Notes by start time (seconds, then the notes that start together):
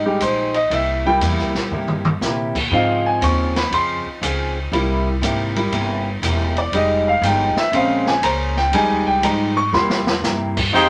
Already playing: G#1
0.05 G3 G#3 D#4 G4
0.20 A#1 F3 G#3 D#4 G4 C5, hi-hat pedal, ride
0.54 D#5, ride
0.70 C2 C3 A#3 E4 G4 E5, ride
1.06 G3 A#3 E4 G5
1.21 E2 C3 A#3 E4 G4, hi-hat pedal, ride
1.38 C2, snare
1.54 A#1, snare
1.71 G2 C3 A#3 E4 G4, mid tom
1.88 mid tom
2.05 mid tom
2.21 A#2 C3 A#3 E4 G4, snare, hi-hat pedal
2.55 kick, crash
2.71 G#2 C#3 F3 C4 D#4 F4 G#4 F5
3.06 G#5
3.21 D#2 C#3 C4 F4 G#4 C#6, hi-hat pedal, ride
3.56 B5, snare, ride
3.71 F2 C#3 C4 F4 G#4 C6, ride
4.05 muted upright bass stroke
4.22 C#2 C#3 C4 F4 G#4, hi-hat pedal, ride
4.72 C2 C3 G3 A#3 E4 G4, ride
5.22 G#1 C3 A#3 E4 G4, hi-hat pedal, ride
5.56 G3 A#3 E4, ride
5.72 G1 C3 A#3 E4 G4, ride
6.22 E1 C3 A#3 E4 G4, hi-hat pedal, ride
6.57 D5, ride
6.72 F1 F3 G3 G#3 D#4 G4 D#5, ride
7.08 F5
7.22 G1 F3 G#3 D#4 G4 G5, hi-hat pedal, ride
7.55 E5, muted upright bass stroke, snare
7.72 A#1 C#3 G#3 A#3 C4 C#4 G#4 C5 F5, ride
8.07 G#5, snare
8.22 C#2 A#3 C#4 G#4 C5 A#5, hi-hat pedal, ride
8.57 G5, snare
8.72 F2 F3 G3 G#3 D#4 G4 G#5, ride
8.89 D#2
9.06 C2 G5
9.22 G#2 F3 G#3 D#4 G4 A#5, hi-hat pedal, ride
9.57 C#6
9.72 E2 C3 G3 A#3 E4 C6, snare
9.76 G4
9.90 snare
10.07 snare
10.22 G2 C3 A#3 E4 G4, snare, hi-hat pedal
10.57 kick, crash
10.72 F2 D#3 F3 G#3 C4 D#4 F4 G4 G#4 C5 G5